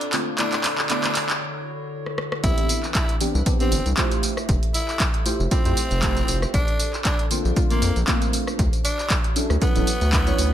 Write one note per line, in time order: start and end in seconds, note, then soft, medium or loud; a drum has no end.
0.00 0.36 A#2 medium
0.00 0.36 C4 medium
0.00 0.36 D4 medium
0.00 0.36 F4 medium
0.00 2.40 A4 medium
0.00 closed hi-hat medium
0.13 0.34 D3 medium
0.13 0.34 A3 medium
0.13 0.34 A#3 medium
0.13 0.34 C4 medium
0.13 0.34 F4 medium
0.13 clap medium
0.13 open hi-hat loud
0.38 0.60 D3 medium
0.38 2.42 D3 medium
0.38 0.60 A3 medium
0.38 0.60 B3 medium
0.38 0.78 D4 loud
0.38 2.42 E4 medium
0.38 0.60 E4 medium
0.38 2.42 F#4 medium
0.38 2.42 C#5 medium
0.38 clap medium
0.38 closed hi-hat medium
0.53 clap medium
0.53 closed hi-hat soft
0.64 clap medium
0.64 open hi-hat loud
0.78 clap medium
0.90 1.11 D3 medium
0.90 1.11 A3 medium
0.90 1.11 B3 medium
0.90 1.29 D4 loud
0.90 1.11 E4 medium
0.90 clap loud
0.90 closed hi-hat medium
1.04 clap medium
1.04 closed hi-hat medium
1.15 clap loud
1.15 open hi-hat loud
1.29 clap medium
1.29 closed hi-hat soft
2.06 cross-stick medium
2.18 cross-stick medium
2.32 cross-stick medium
2.43 2.53 C2 loud
2.43 3.16 E3 loud
2.43 3.16 B3 medium
2.43 3.16 C4 medium
2.43 4.21 D4 medium
2.43 3.16 D4 loud
2.43 2.83 E4 loud
2.43 3.16 G4 loud
2.43 4.21 B4 medium
2.43 6.50 E5 medium
2.43 kick loud
2.43 closed hi-hat medium
2.43 tambourine soft
2.58 closed hi-hat medium
2.69 open hi-hat loud
2.69 tambourine medium
2.83 clap soft
2.83 tambourine soft
2.95 3.15 E4 medium
2.95 kick loud
2.95 clap loud
2.95 closed hi-hat medium
2.95 tambourine soft
3.09 closed hi-hat medium
3.20 3.42 E3 medium
3.20 3.42 B3 medium
3.20 3.42 C4 medium
3.20 3.42 D4 medium
3.20 3.42 G4 medium
3.20 open hi-hat loud
3.20 tambourine medium
3.35 3.42 C2 medium
3.35 tambourine soft
3.46 3.57 E3 loud
3.46 3.57 B3 medium
3.46 3.57 C4 medium
3.46 3.57 D4 medium
3.46 3.57 G4 loud
3.46 kick loud
3.46 closed hi-hat medium
3.46 tambourine soft
3.60 3.72 E3 loud
3.60 3.72 B3 medium
3.60 3.89 C4 medium
3.60 3.72 C4 medium
3.60 3.72 D4 medium
3.60 3.72 G4 loud
3.60 closed hi-hat medium
3.60 tambourine soft
3.72 3.81 G1 loud
3.72 open hi-hat loud
3.72 tambourine medium
3.86 3.93 C2 medium
3.86 closed hi-hat soft
3.86 tambourine soft
3.97 5.23 A3 loud
3.97 5.23 E4 medium
3.97 5.23 F4 medium
3.97 5.23 G4 medium
3.97 5.23 C5 loud
3.97 kick loud
3.97 clap loud
3.97 closed hi-hat medium
3.97 tambourine soft
4.12 closed hi-hat medium
4.12 tambourine soft
4.23 6.52 G4 medium
4.23 8.55 A4 medium
4.23 open hi-hat loud
4.23 tambourine medium
4.37 cross-stick medium
4.37 tambourine soft
4.49 4.58 F1 loud
4.49 kick loud
4.49 closed hi-hat medium
4.49 tambourine soft
4.63 closed hi-hat medium
4.74 5.04 E4 medium
4.74 open hi-hat loud
4.74 tambourine medium
4.88 clap soft
4.88 tambourine soft
5.00 kick loud
5.00 clap loud
5.00 closed hi-hat medium
5.00 tambourine soft
5.14 closed hi-hat medium
5.25 5.47 A3 medium
5.25 5.47 E4 medium
5.25 5.47 F4 medium
5.25 5.47 G4 medium
5.25 5.47 C5 medium
5.25 open hi-hat loud
5.25 tambourine medium
5.40 5.47 F1 loud
5.40 tambourine soft
5.51 5.62 A3 loud
5.51 6.45 C4 loud
5.51 5.62 E4 medium
5.51 5.62 F4 medium
5.51 5.62 G4 medium
5.51 5.62 C5 loud
5.51 kick loud
5.51 closed hi-hat medium
5.51 tambourine soft
5.65 5.73 F2 loud
5.65 5.77 A3 loud
5.65 5.77 E4 medium
5.65 5.77 F4 medium
5.65 5.77 G4 medium
5.65 5.77 C5 loud
5.65 closed hi-hat medium
5.65 tambourine soft
5.77 open hi-hat loud
5.77 tambourine medium
5.91 6.22 F1 loud
5.91 closed hi-hat soft
5.91 tambourine soft
6.02 6.52 A3 loud
6.02 6.52 E4 loud
6.02 6.52 F4 loud
6.02 6.53 G4 loud
6.02 6.53 C5 loud
6.02 kick loud
6.02 clap loud
6.02 closed hi-hat medium
6.02 tambourine soft
6.17 closed hi-hat medium
6.17 tambourine soft
6.28 6.46 F1 medium
6.28 open hi-hat loud
6.28 tambourine medium
6.42 cross-stick medium
6.42 tambourine soft
6.54 6.63 A#1 loud
6.54 8.57 D4 medium
6.54 6.94 D4 loud
6.54 8.57 C5 loud
6.54 kick loud
6.54 closed hi-hat medium
6.54 tambourine soft
6.68 closed hi-hat medium
6.80 open hi-hat loud
6.80 tambourine medium
6.93 clap soft
6.93 tambourine soft
7.05 7.25 D4 medium
7.05 kick loud
7.05 clap loud
7.05 closed hi-hat medium
7.05 tambourine soft
7.19 closed hi-hat medium
7.31 7.52 D3 medium
7.31 7.52 A3 medium
7.31 7.52 A#3 medium
7.31 7.52 C4 medium
7.31 7.52 F4 medium
7.31 open hi-hat loud
7.31 tambourine medium
7.45 7.52 A#1 medium
7.45 tambourine soft
7.56 7.67 D3 loud
7.56 7.67 A3 medium
7.56 7.67 A#3 medium
7.56 7.67 C4 medium
7.56 7.67 F4 loud
7.56 kick loud
7.56 closed hi-hat medium
7.56 tambourine soft
7.70 7.82 D3 loud
7.70 7.82 A3 medium
7.70 7.99 A#3 medium
7.70 7.82 A#3 medium
7.70 7.82 C4 medium
7.70 7.82 F4 loud
7.70 closed hi-hat soft
7.70 tambourine soft
7.82 7.91 F2 loud
7.82 open hi-hat loud
7.82 tambourine medium
7.96 8.04 A#1 loud
7.96 closed hi-hat soft
7.96 tambourine soft
8.08 8.58 D3 loud
8.08 8.58 A3 loud
8.08 8.58 A#3 loud
8.08 8.58 C4 medium
8.08 8.58 F4 loud
8.08 kick loud
8.08 clap loud
8.08 closed hi-hat medium
8.08 tambourine soft
8.22 closed hi-hat medium
8.22 tambourine soft
8.33 open hi-hat loud
8.33 tambourine medium
8.47 cross-stick medium
8.47 tambourine soft
8.59 8.68 D2 loud
8.59 10.53 F#4 medium
8.59 10.53 C#5 medium
8.59 10.53 E5 medium
8.59 kick loud
8.59 closed hi-hat medium
8.59 tambourine soft
8.73 closed hi-hat medium
8.73 tambourine soft
8.85 9.14 D4 loud
8.85 open hi-hat loud
8.85 tambourine medium
8.99 clap soft
8.99 tambourine soft
9.10 kick loud
9.10 clap loud
9.10 closed hi-hat medium
9.10 tambourine soft
9.24 closed hi-hat soft
9.36 9.57 F#3 medium
9.36 9.57 C#4 medium
9.36 9.57 D4 medium
9.36 9.57 E4 medium
9.36 9.57 A4 medium
9.36 open hi-hat loud
9.36 tambourine medium
9.50 9.57 D2 medium
9.50 cross-stick medium
9.50 tambourine soft
9.61 9.72 F#3 loud
9.61 10.53 B3 loud
9.61 9.72 C#4 medium
9.61 9.72 D4 medium
9.61 9.72 E4 medium
9.61 9.72 A4 loud
9.61 kick loud
9.61 closed hi-hat medium
9.61 tambourine soft
9.75 9.83 D1 loud
9.75 9.87 F#3 loud
9.75 9.87 C#4 medium
9.75 9.87 D4 medium
9.75 9.87 E4 medium
9.75 9.88 A4 loud
9.75 closed hi-hat medium
9.75 tambourine soft
9.87 open hi-hat loud
9.87 tambourine medium
10.01 10.32 D2 loud
10.01 closed hi-hat soft
10.01 tambourine soft
10.13 10.23 F#3 medium
10.13 10.23 C#4 medium
10.13 10.24 D4 medium
10.13 10.24 E4 medium
10.13 10.24 B4 medium
10.13 kick loud
10.13 clap loud
10.13 open hi-hat medium
10.13 tambourine soft
10.27 10.53 F#3 loud
10.27 10.53 C#4 medium
10.27 10.53 D4 medium
10.27 10.53 E4 medium
10.27 10.53 C#5 loud
10.27 closed hi-hat medium
10.27 tambourine soft
10.38 10.53 D2 medium
10.38 open hi-hat loud
10.38 tambourine medium